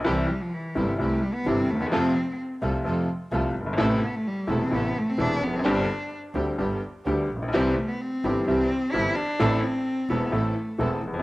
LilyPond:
<<
  \new Staff \with { instrumentName = "String section" } { \time 4/4 \key c \major \tempo 4 = 129 <c' e' g'>8 r4 <c' e' g'>8 <c' e' g'>8 r8 <c' e' g'>8 r8 | <c' f' a'>8 r4 <c' f' a'>8 <c' f' a'>8 r8 <c' f' a'>8 r8 | <c' e' a'>8 r4 <c' e' a'>8 <c' e' a'>8 r8 <c' e' a'>8 r8 | <c' d' g'>8 r4 <c' d' g'>8 <b d' g'>8 r8 <b d' g'>8 r8 |
<c' e' g'>8 r4 <c' e' g'>8 <c' e' g'>8 r8 <c' e' g'>8 r8 | <c' e' a'>8 r4 <c' e' a'>8 <c' e' a'>8 r8 <c' e' a'>8 r8 | }
  \new Staff \with { instrumentName = "Cello" } { \time 4/4 \key c \major e8 g16 f16 e8 g16 b16 a8 g16 b16 c'8 a16 b16 | c'4 r2. | a8 b16 a16 g8 a16 c'16 b8 a16 c'16 d'8 b16 c'16 | d'4 r2. |
c'8 a16 b16 c'4 c'4 e'8 d'8~ | d'8 c'4 b8 a4 r4 | }
  \new Staff \with { instrumentName = "Upright piano" } { \clef bass \time 4/4 \key c \major <c, c e g e'>8 r4 <g,, g, c e g e'>8 <c, c e g e'>8 r8 <g,, g, c e g e'>8 r32 d,32 ees,32 e,32 | <f, c f a f'>8 r4 <c, c f a f'>8 <f, c f a f'>8 r8 <c, c f a f'>8 r32 fis,,32 g,,32 aes,,32 | <a,, a, c e a e'>8 r4 <e,, e, c e a e'>8 <a,, a, c e a e'>8 r8 <e,, e, c e a e'>8 r32 e,32 f,32 fis,32 | <g,, g, d g c' g'>8 r4 <d, d g c' g'>8 <g,, g, d g b g'>8 r8 <d, d g b g'>8 r32 a,,32 bes,,32 b,,32 |
<c, c e g c' g'>8 r4 <g,, g, e g c' g'>8 <c, c e g c' g'>8 r8 <g,, g, e g c' g'>8 r8 | <a,, a, e a c' a'>8 r4 <e,, e, e a c' a'>8 <a,, a, e a c' a'>8 r8 <e,, e, e a c' a'>8 r32 e,32 f,32 fis,32 | }
  \new Staff \with { instrumentName = "Double bass" } { \clef bass \time 4/4 \key c \major c,8 r4 g,,8 c,8 r8 g,,8 ees,8 | f,8 r4 c,8 f,8 r8 c,8 g,,8 | a,,8 r4 e,,8 a,,8 r8 e,,8 f,,8 | g,,8 r4 d,8 g,,8 r8 d,8 bes,,8 |
c,8 r4 g,,8 c,8 r8 g,,8 r8 | a,,8 r4 e,,8 a,,8 r8 e,,8 f,,8 | }
>>